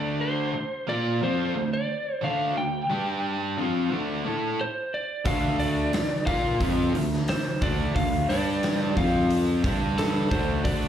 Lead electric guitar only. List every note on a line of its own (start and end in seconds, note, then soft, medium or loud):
0.00 0.18 D5 medium
0.21 0.89 C5 medium
0.89 1.23 D5 medium
1.24 1.70 C5 medium
1.73 2.25 D5 medium
2.24 2.57 F5 medium
2.58 3.54 G5 medium
4.61 4.95 C5 medium
4.94 5.26 D5 medium
5.27 5.58 F5 loud
5.60 6.26 D5 medium
6.26 6.58 F5 medium
7.30 7.64 C5 medium
7.63 7.95 D5 medium
7.96 8.29 F5 loud
8.29 8.97 D5 medium
8.98 9.28 F5 medium
9.99 10.31 A4 medium
10.32 10.66 C5 medium
10.64 10.88 D5 loud